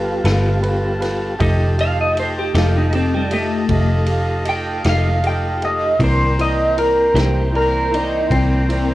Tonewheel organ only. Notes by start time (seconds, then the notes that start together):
Already playing: G3 B3 F4 G4
1.38 A3 D#4 F4 G4
6.00 E3 A#3 C4 A#4